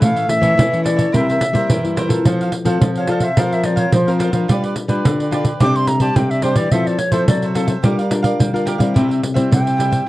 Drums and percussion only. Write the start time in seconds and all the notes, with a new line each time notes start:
0.02 pandeiro
0.17 pandeiro
0.29 pandeiro
0.43 pandeiro
0.59 pandeiro
0.74 pandeiro
0.86 pandeiro
0.99 pandeiro
1.14 pandeiro
1.30 pandeiro
1.41 pandeiro
1.55 pandeiro
1.70 pandeiro
1.85 pandeiro
1.97 pandeiro
2.10 pandeiro
2.25 pandeiro
2.41 pandeiro
2.52 pandeiro
2.65 pandeiro
2.81 pandeiro
2.96 pandeiro
3.07 pandeiro
3.20 pandeiro
3.37 pandeiro
3.52 pandeiro
3.64 pandeiro
3.77 pandeiro
3.92 pandeiro
4.08 pandeiro
4.20 pandeiro
4.33 pandeiro
4.49 pandeiro
4.64 pandeiro
4.76 pandeiro
4.89 pandeiro
5.05 pandeiro
5.20 pandeiro
5.32 pandeiro
5.45 pandeiro
5.60 pandeiro
5.76 pandeiro
5.87 pandeiro
6.00 pandeiro
6.16 pandeiro
6.31 pandeiro
6.42 pandeiro
6.56 pandeiro
6.71 pandeiro
6.87 pandeiro
6.99 pandeiro
7.12 pandeiro
7.28 pandeiro
7.42 pandeiro
7.55 pandeiro
7.68 pandeiro
7.84 pandeiro
7.99 pandeiro
8.11 pandeiro
8.24 pandeiro
8.40 pandeiro
8.56 pandeiro
8.67 pandeiro
8.80 pandeiro
8.96 pandeiro
9.11 pandeiro
9.23 pandeiro
9.36 pandeiro
9.52 pandeiro
9.67 pandeiro
9.80 pandeiro
9.92 pandeiro